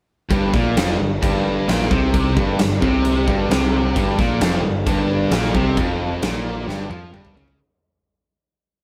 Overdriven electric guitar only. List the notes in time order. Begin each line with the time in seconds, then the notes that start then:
0.31 G2
0.55 A#2
0.78 F2
0.99 G2
1.23 G2
1.68 A#2
1.91 C3
2.36 G2
2.59 G2
2.80 C3
3.27 G2
3.49 C3
3.96 G2
4.19 A#2
4.42 F2
4.64 G2
4.87 G2
5.32 A#2
5.55 C3
5.78 F2
6.23 A#2
6.67 G2
6.89 F3
7.11 G2
7.36 C#3